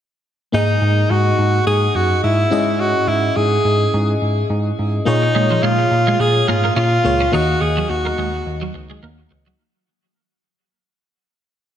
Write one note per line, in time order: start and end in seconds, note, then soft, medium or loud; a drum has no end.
0.52 0.74 G#2 medium
0.52 1.34 G#2 medium
0.52 2.47 A#3 medium
0.52 2.47 D#4 medium
0.52 1.12 D#4 medium
0.52 2.48 G#4 soft
0.52 2.48 D#5 medium
0.82 1.02 G#2 medium
1.10 1.31 G#2 medium
1.10 1.66 F#4 medium
1.38 1.59 G#2 medium
1.67 1.87 G#2 medium
1.67 1.97 G#4 medium
1.95 2.15 F#2 medium
1.95 2.23 F#4 medium
2.23 2.44 G#2 medium
2.23 2.82 E4 medium
2.50 2.92 G#2 medium
2.50 3.32 G#2 medium
2.50 4.73 C#4 medium
2.50 4.74 E4 medium
2.50 4.74 G#4 medium
2.50 4.75 D#5 medium
2.80 3.10 F#4 medium
3.08 3.29 G#2 medium
3.08 3.38 E4 medium
3.36 3.57 G#2 medium
3.36 4.21 G#4 medium
3.65 3.85 G#2 medium
3.93 4.14 G#2 loud
4.21 4.42 G#2 medium
4.50 4.70 G#2 medium
4.78 4.99 G#2 medium
5.05 5.87 A#2 medium
5.05 5.27 A#2 loud
5.05 7.00 A#3 medium
5.05 5.65 D#4 medium
5.05 7.00 F4 medium
5.05 7.01 G#4 medium
5.05 7.01 C#5 medium
5.22 muted clean electric guitar stroke soft
5.35 5.55 A#2 medium
5.35 5.47 G#3 medium
5.51 5.61 F3 medium
5.63 5.83 A#2 medium
5.63 5.75 G#3 medium
5.63 6.22 F4 medium
5.79 muted clean electric guitar stroke soft
5.91 6.12 A#2 medium
6.07 6.17 G#3 medium
6.20 6.40 A#2 medium
6.20 6.49 G#4 loud
6.20 muted clean electric guitar stroke soft
6.48 6.68 G#2 medium
6.48 6.60 A#3 medium
6.48 6.76 F4 medium
6.64 6.74 A#3 medium
6.76 6.97 A#2 medium
6.76 6.89 C#4 medium
6.76 7.34 F4 medium
7.04 7.25 C#2 medium
7.04 7.31 A#3 soft
7.04 7.33 F4 soft
7.04 7.33 G#4 soft
7.04 7.33 C#5 soft
7.04 muted clean electric guitar stroke soft
7.21 7.30 C#4 medium
7.32 7.53 D#2 medium
7.32 8.14 D#3 medium
7.32 9.55 A#3 medium
7.32 9.55 D#4 soft
7.32 7.45 D#4 medium
7.32 7.62 F#4 medium
7.32 9.56 F#4 soft
7.32 9.56 D#5 medium
7.61 7.82 D#2 medium
7.61 7.91 G#4 medium
7.61 muted clean electric guitar stroke soft
7.77 7.87 F#3 medium
7.89 8.10 D#2 medium
7.89 8.74 F#4 medium
7.89 muted clean electric guitar stroke soft
8.05 8.15 A#3 medium
8.18 8.38 D#2 medium
8.18 8.30 G#3 medium
8.46 8.66 D#2 medium
8.62 8.72 F#3 medium
8.74 8.95 C#2 medium
8.74 muted clean electric guitar stroke soft
8.90 9.00 G#3 medium
9.03 9.23 D#2 medium
9.03 9.15 A#3 medium
9.31 9.51 C#2 medium
9.31 muted clean electric guitar stroke soft
9.46 9.57 F#3 medium